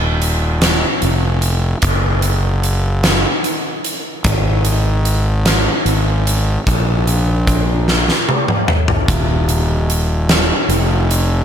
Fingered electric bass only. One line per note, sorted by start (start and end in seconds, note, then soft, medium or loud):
0.00 0.83 D#1 medium
1.02 1.73 F1 medium
1.83 3.25 F#1 medium
4.25 5.67 G#1 loud
5.85 6.57 G#1 medium
6.66 8.09 A#1 loud
9.08 10.51 D#1 loud
10.69 11.40 F1 medium